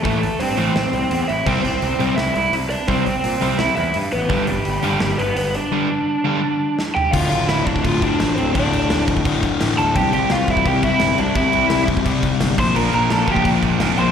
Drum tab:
CC |----------------|x---------------|----------------|----------------|
HH |o-o-o-o-o-o-o-o-|--o-o-o-o-o-o-o-|o-o-o-o-o-o-o-o-|o-o-o-o-o-o-o-o-|
SD |--------o-------|--------o-------|--------o-------|--------o-------|
FT |----------------|----------------|----------------|----------------|
BD |o---------------|o---------------|o---------------|o---------------|

CC |----------------|x-x-x-x-x-x-x-x-|x-x-x-x-x-x-x-x-|x-x-x-x-x-x-x-x-|
HH |----------------|----------------|----------------|----------------|
SD |------------o---|----o-------o---|----o-------o---|----o-------o---|
FT |--------------o-|----------------|----------------|----------------|
BD |----------------|o-----ooo-o-----|o-----ooo-o-----|o-----ooo-o-----|

CC |x-x-x-x-x-x-x-x-|x-x-x-x-x-x-x-x-|
HH |----------------|----------------|
SD |----o-------o---|----o-------o---|
FT |----------------|----------------|
BD |o-----ooo-o---o-|------ooo-o-----|